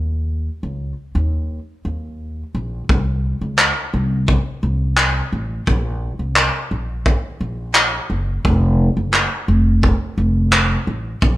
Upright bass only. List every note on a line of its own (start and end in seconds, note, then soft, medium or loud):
0.00 0.47 D#2 medium
0.63 0.92 C#2 medium
1.15 1.58 D#2 medium
1.85 2.42 D#2 medium
2.55 2.83 A#1 medium
2.89 3.32 C2 medium
3.41 3.70 C#2 medium
3.94 4.36 C2 medium
4.63 5.20 C2 medium
5.32 5.61 A1 medium
5.67 6.10 A#1 loud
6.19 6.48 C2 medium
6.71 7.14 A#1 medium
7.41 7.98 A#1 medium
8.10 8.38 F#1 medium
8.45 8.88 F1 loud
8.97 9.25 F#1 medium
9.48 9.91 F1 medium
10.18 10.75 F1 medium
10.87 11.16 A1 medium
11.22 11.37 A#1 loud